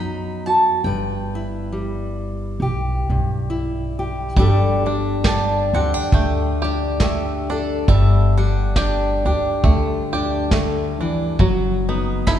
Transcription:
Already playing: F#2 F#3 B3 B4 B5
0.00 D#4
0.46 F#4 A5
0.84 G1 G2 B4 G5
1.35 E4
1.73 G3
2.60 B1 G4
3.09 B1 G2
3.50 E4
3.99 G4
4.37 G1 G2 G3 D4 G4 A4, kick
4.86 G3 D4
5.24 D4 G4 A5, kick, snare
5.73 D2 C4 G4 F#5
5.94 D4
6.12 D2 D3 A3 G5, kick
6.62 D4 G4
7.00 A3 G4 E5, kick, snare
7.50 D4 A4 D5
7.88 G1 G2 G3 E5, kick
8.38 G3 D4 F#5
8.76 D4 G4 G5, kick, snare
9.25 D2 D4 G4
9.64 D2 D3 A3, kick
10.13 D4 G4
10.51 D3 A3, kick, snare
11.00 E3 D4
11.39 F#1 F#3, kick
11.89 B3 D#4
12.27 D#4 E4 B5, kick, snare

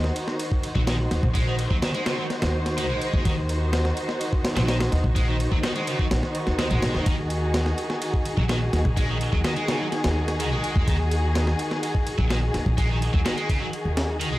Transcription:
Already playing: D#3 D#4 F#4 C5
0.04 snare
0.16 ride
0.28 snare
0.40 ride
0.52 kick
0.63 ride
0.75 A#1 F#3, kick
0.87 D#3, snare, ride
1.11 D#2, snare, ride
1.23 A#1, kick
1.35 G#3, kick, ride
1.47 D#3
1.59 ride
1.71 D#2 F#3, kick
1.82 D#3, snare, ride
1.95 G#3, ride
2.06 C#3, snare, ride
2.18 F#3
2.30 snare, ride
2.42 D#2, snare, ride
2.66 snare, ride
2.78 D#3, ride
2.90 A#1 G#3
3.02 ride
3.14 D#2, kick
3.25 D#2 D#3, kick, ride
3.49 ride
3.73 snare, ride
3.85 snare
3.97 ride
4.09 snare
4.21 ride
4.33 kick
4.45 snare, ride
4.56 A#1 F#3, snare, ride
4.68 D#3, snare, ride
4.80 snare, ride
4.92 D#2, snare, ride
5.04 A#1, kick
5.16 G#3, kick, ride
5.28 D#3
5.40 ride
5.52 D#2 F#3, kick
5.63 D#3, snare, ride
5.76 G#3, ride
5.87 C#3, ride
5.99 F#3, kick
6.11 A#1, snare, ride
6.23 snare
6.35 ride
6.47 D#2, snare
6.59 D#3, snare, ride
6.71 A#1 G#3, ride
6.82 A#1, snare, ride
6.95 D#2, snare
7.06 D#2 D#3 G#4, kick, ride
7.30 ride
7.54 snare, ride
7.66 snare
7.78 ride
7.90 snare
8.02 ride
8.14 kick
8.25 ride
8.37 A#1 F#3, kick
8.49 D#3, snare, ride
8.73 D#2, snare, ride
8.85 A#1, kick
8.97 G#3, kick, ride
9.09 D#3
9.21 ride
9.33 D#2 F#3, kick
9.44 D#3, snare, ride
9.56 G#3, ride
9.68 C#3, snare, ride
9.80 F#3
9.92 snare, ride
10.04 D#2, snare, ride
10.28 snare, ride
10.40 D#3, ride
10.52 A#1 G#3
10.64 ride
10.76 D#2, kick
10.87 D#2 D#3, kick, ride
11.11 ride
11.35 snare, ride
11.47 snare
11.59 ride
11.71 snare
11.83 ride
11.95 kick
12.07 ride
12.18 A#1 F#3, kick
12.30 D#3, snare, ride
12.54 D#2, snare, ride
12.66 A#1, kick
12.78 G#3, kick, ride
12.89 D#3
13.02 ride
13.13 D#2 F#3, kick
13.25 D#3, snare, ride
13.37 G#3, ride
13.49 C#3, kick, ride
13.60 F#3
13.73 ride
13.85 D#2
13.97 snare, ride
14.21 D#3, ride
14.32 A#1 G#3

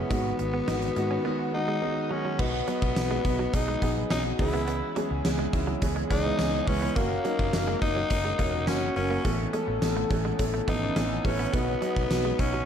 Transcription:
Already playing: C#3 G#3 B3 C#4 E4
0.10 G#1 D#3 G#3 B3 F#4, kick, closed hi-hat
0.39 G#1 D#3 G#3 B3 F#4, muted clean electric guitar stroke, closed hi-hat
0.54 B3
0.67 G#1 D#3 G#3 B3 D#4 F#4, snare, closed hi-hat
0.82 closed hi-hat
0.96 G#2 D#3 G#3 B3 F#4, muted clean electric guitar stroke, closed hi-hat
1.11 C#4
1.24 D#3 G#3 B3 F#4
1.39 muted clean electric guitar stroke
1.53 D#3 G#3 B3 D#4 F#4
1.68 G#3
1.82 D#3 G#3 B3 F#4, muted clean electric guitar stroke
2.10 D#3 F#3 G#3 B3 C#4 F#4
2.25 F#3
2.39 B1 B3 D#4 F#4, kick, crash
2.68 F#3 B3 D#4 F#4, closed hi-hat
2.82 B1, muted clean electric guitar stroke, kick
2.96 B1 B3 D#4 F#4, snare, closed hi-hat, tambourine
3.11 G#3
3.25 B1 B3 D#4 F#4, muted clean electric guitar stroke, kick, closed hi-hat
3.39 F#3
3.53 B1 B3 D#4 G#4, muted clean electric guitar stroke, kick, closed hi-hat
3.68 G#3
3.82 A#1 B3 D#4 G#4, kick, closed hi-hat
3.96 F#3 D#4 B4
4.10 B1 B3 C#4 D#4 F#4, snare, closed hi-hat, tambourine
4.39 C#2 D#3 G#3 B3 C#4 E4 G#4 B4, muted clean electric guitar stroke, kick, open hi-hat
4.45 E3
4.54 B3
4.68 B3, closed hi-hat
4.96 E3 F#3 G#3 B3 C#4 G#4, closed hi-hat
5.11 C#2, muted clean electric guitar stroke
5.24 C#2 E3 G#3 B3 C#4 G#4, snare, closed hi-hat, tambourine
5.39 G#3
5.53 C#2 E3 G#3 B3 C#4 E4, muted clean electric guitar stroke, kick, closed hi-hat
5.67 F#3
5.82 C#2 E3 G#3 B3 C#4 G#4, muted clean electric guitar stroke, kick, closed hi-hat
5.96 G#3
6.10 C#2 E3 G#3 B3 C#4 D#4 G#4, kick, closed hi-hat
6.25 G#3 E4 B4
6.39 C#2 E3 G#3 B3 C#4 G#4, snare, closed hi-hat, tambourine
6.67 C#2 E3 G#3 B3 C#4 E4 B4, muted clean electric guitar stroke, kick, open hi-hat
6.82 B3
6.96 F#1 A#3 C#4 F#4, kick, closed hi-hat
7.24 F#3 A#3 C#4 D#4, closed hi-hat
7.39 F#1, muted clean electric guitar stroke, kick
7.53 F#1 A#3 C#4 F#4, snare, closed hi-hat, tambourine
7.67 G#3
7.82 F#1 A#3 C#4 D#4 F#4, muted clean electric guitar stroke, kick, closed hi-hat
7.96 F#3
8.10 F#1 A#3 C#4 F#4, muted clean electric guitar stroke, kick, closed hi-hat
8.25 G#3
8.39 E1 A#3 C#4 F#4, kick, closed hi-hat
8.53 F#3 C#4 A#4
8.67 F#1 A#3 C#4 F#4, snare, closed hi-hat, tambourine
8.96 F#1 F#3 A#3 C#4 F#4 A#4, muted clean electric guitar stroke, open hi-hat
9.11 A#3
9.24 A1 E3 A3 B3 C#4 A4, kick, closed hi-hat
9.53 E3 G#3 A3 B3 C#4 A4, closed hi-hat
9.68 A1, muted clean electric guitar stroke
9.81 A1 E3 A3 B3 C#4 A4, snare, closed hi-hat, tambourine
9.96 A3
10.10 A1 E3 A3 B3 C#4 A4, muted clean electric guitar stroke, kick, closed hi-hat
10.25 G#3
10.39 A1 E3 A3 B3 C#4 A4, muted clean electric guitar stroke, kick, closed hi-hat
10.54 A3
10.67 G#1 E3 A3 B3 C#4 D#4 A4, kick, closed hi-hat
10.82 E3 C#4 B4
10.96 A1 E3 A3 B3 C#4 A4, snare, closed hi-hat, tambourine
11.24 A1 E3 A3 B3 C#4 A4 B4, muted clean electric guitar stroke, kick, open hi-hat
11.39 B3
11.53 B1 F#3 B3 D#4, kick, closed hi-hat
11.81 F#3 B3 D#4, closed hi-hat
11.96 B1, muted clean electric guitar stroke, kick
12.10 B1 F#3 B3 F#4, snare, closed hi-hat, tambourine
12.25 G#3
12.39 B1 F#3 B3 C#4 D#4, muted clean electric guitar stroke, kick, closed hi-hat
12.53 F#3

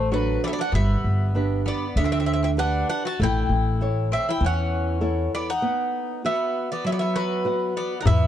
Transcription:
Already playing: A1 A3
0.12 F#3 D4 F#4 A4 B4
0.44 B3 C4 D5 E5
0.49 B3 D5
0.59 D4 F#5
0.72 G1 G3 B3 E5
1.04 G1
1.35 D4 G4 B4
1.66 B3 D5
1.96 D2 D3 B3 E5
2.04 C4 E5
2.12 C4 E5
2.20 C4 E5
2.26 C4 E5
2.33 C4 E5
2.43 C4 E5
2.57 D4 G4 B4 F#5
2.89 D4 F#5
3.05 F#4 A5
3.20 A1 A3 E4 G5
3.49 A1
3.81 E4 A4 C#5
4.12 C4 E5
4.29 E4 G5
4.41 E2 E3 C#4
4.46 F#5
5.01 E4 A4 C#5
5.35 B3 D5
5.50 D#4 F#5
5.62 B3
6.24 B3 F#4 B4 E5 F#5
6.72 B3 D5
6.84 F#3 B3 E5
6.92 B3 D5
6.99 B3 E5
7.16 F#3 B4
7.45 F#4 B4 F#5
7.77 B3 D5
8.01 D#4 F#5
8.05 E2 E3 B3 E5, darbuka dum

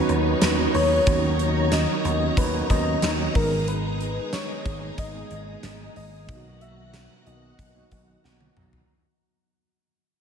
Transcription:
Already playing: D#3 F#3 B3 C#4 D#4 F#4 B4 C#5
0.09 D#2, closed hi-hat
0.42 D#2, snare, closed hi-hat, tambourine
0.74 D#2 C#5, open hi-hat
1.06 D#2 D#3 F#3 B3 C#4 F#4 A#5, kick, closed hi-hat
1.39 closed hi-hat
1.72 D#5, snare, closed hi-hat, tambourine
2.04 D#2 D#3 F#3 B3 C#4 F#4, closed hi-hat
2.37 D#2 B4, kick, closed hi-hat
2.53 D#3 F#3 B3 C#4 F#4
2.70 D#2 D#5, kick, closed hi-hat
3.02 D#2, snare, closed hi-hat, tambourine
3.35 G#1 D#3 G#3 B3 D#4 G#4 A#4, kick, open hi-hat
3.68 B4, closed hi-hat
4.01 closed hi-hat
4.33 C#5, snare, closed hi-hat, tambourine
4.65 G#1 D#3 G#3 A#3 B3 G#4, kick, closed hi-hat
4.98 G#1 D#5, kick, closed hi-hat
5.14 D#3 G#3 A#3 B3 G#4
5.31 G#1, closed hi-hat
5.63 G#1, snare, closed hi-hat, tambourine
5.96 G#1 D#5, open hi-hat
6.28 B1 B2 D#3 F#3 A#3 B3 F4 F#4 F#5, kick, closed hi-hat
6.36 F#4
6.61 E5, closed hi-hat
6.93 snare, closed hi-hat, tambourine
7.26 B1 D#3 F#3 A#3 B3 F#4 D#5, closed hi-hat
7.59 B1, kick, closed hi-hat
7.75 D#3 F#3 A#3 B3 F#4
7.91 B1, kick, closed hi-hat
8.24 B1 F#5, snare
8.41 high tom
8.57 B1 A#5, mid tom
8.73 floor tom

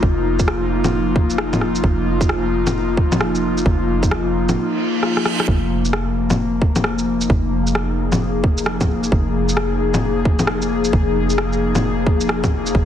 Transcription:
Already playing: F3 A#3 D#4 F4
0.03 F1, kick
0.39 kick, shaker
0.48 cross-stick
0.84 low bongo, shaker
1.16 kick
1.30 shaker
1.38 cross-stick
1.53 low bongo, shaker
1.61 cross-stick
1.75 shaker
1.84 F1, kick
2.21 kick, shaker
2.29 cross-stick
2.67 low bongo, shaker
2.97 kick
3.12 low bongo, shaker
3.21 cross-stick
3.35 shaker
3.58 shaker
3.66 F1, kick
4.03 kick, shaker
4.11 cross-stick
4.49 low bongo, shaker
4.57 reverse cymbal
5.03 cross-stick
5.17 cross-stick
5.25 cross-stick
5.40 cross-stick
5.48 F1 F3, kick
5.56 A#3
5.85 shaker
5.93 cross-stick
6.30 low bongo, shaker
6.62 kick
6.70 D#4
6.76 low bongo, shaker
6.84 cross-stick
6.99 shaker
7.21 shaker
7.30 F1, kick
7.42 G#4
7.67 shaker
7.75 cross-stick
8.12 low bongo, shaker
8.44 kick
8.58 shaker
8.66 cross-stick
8.81 kick, low bongo, shaker
9.03 shaker
9.12 F1, kick
9.49 shaker
9.57 cross-stick
9.94 low bongo, shaker
10.25 kick
10.39 low bongo, shaker
10.47 cross-stick
10.62 shaker
10.84 shaker
10.93 F1, kick
11.30 shaker
11.38 cross-stick
11.52 shaker
11.75 low bongo, shaker
12.06 kick
12.21 shaker
12.29 cross-stick
12.44 kick, low bongo, shaker
12.66 shaker
12.75 F1, kick

